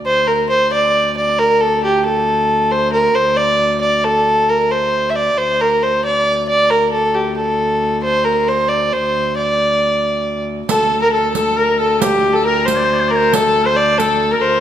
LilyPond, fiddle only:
\new Staff \with { instrumentName = "Fiddle" } { \time 6/8 \key a \phrygian \tempo 4. = 90 c''8 bes'8 c''8 d''4 d''8 | bes'8 a'8 g'8 a'4. | c''8 bes'8 c''8 d''4 d''8 | a'4 bes'8 c''8.~ c''32 e''32 d''8 |
c''8 bes'8 c''8 d''4 d''8 | bes'8 a'8 g'8 a'4. | c''8 bes'8 c''8 d''8 c''4 | d''2~ d''8 r8 |
a'8. bes'16 a'8 a'8 bes'8 a'8 | g'8. a'16 bes'8 c''4 bes'8 | a'8. c''16 d''8 a'8. bes'16 c''8 | }